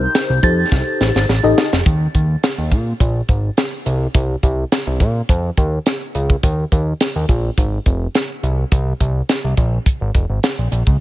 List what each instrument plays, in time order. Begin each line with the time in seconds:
Already playing: fm electric piano D#4 G4 A#4 C5, synth bell G6
0.15 snare, closed hi-hat
0.30 analog synth bass C2
0.43 analog synth bass F2, fm electric piano D#4 G4 A4 C5, synth bell A6, kick, closed hi-hat
0.72 analog synth bass C2, kick, snare
1.00 analog synth bass A1, snare
1.16 analog synth bass G#1, snare
1.29 analog synth bass A1, snare
1.43 analog synth bass A1, fm electric piano D#4 G4 A4 D#5
1.58 snare
1.73 analog synth bass F1, snare
1.86 analog synth bass D#2, kick, closed hi-hat
2.15 analog synth bass D#2, kick, closed hi-hat
2.43 snare, closed hi-hat
2.58 analog synth bass D#2
2.72 analog synth bass A#2, kick, closed hi-hat
3.00 analog synth bass A#1, kick, closed hi-hat
3.29 analog synth bass G#1, kick, closed hi-hat
3.57 snare, closed hi-hat
3.86 analog synth bass C2, closed hi-hat
4.15 analog synth bass C2, kick, closed hi-hat
4.43 analog synth bass C2, kick, closed hi-hat
4.72 snare, closed hi-hat
4.87 analog synth bass C2
5.00 analog synth bass A#2, kick, closed hi-hat
5.29 analog synth bass F2, kick, closed hi-hat
5.57 analog synth bass D#2, kick, closed hi-hat
5.86 snare, closed hi-hat
6.15 analog synth bass C#2, closed hi-hat
6.30 kick
6.43 analog synth bass D#2, kick, closed hi-hat
6.72 analog synth bass D#2, kick, closed hi-hat
7.01 snare, closed hi-hat
7.16 analog synth bass D#2
7.29 analog synth bass A#1, kick, closed hi-hat
7.58 analog synth bass G#1, kick, closed hi-hat
7.86 analog synth bass F1, kick, closed hi-hat
8.15 snare, closed hi-hat
8.43 analog synth bass C2, closed hi-hat
8.72 analog synth bass C2, kick, closed hi-hat
9.00 analog synth bass C2, kick, closed hi-hat
9.29 snare, closed hi-hat
9.44 analog synth bass C2
9.57 analog synth bass A#1, kick, closed hi-hat
9.86 kick, closed hi-hat
10.01 analog synth bass G#1
10.14 analog synth bass F1, kick, closed hi-hat
10.30 analog synth bass G#1
10.43 snare, closed hi-hat
10.58 analog synth bass A#1
10.72 analog synth bass A#1, closed hi-hat
10.87 analog synth bass C#2, kick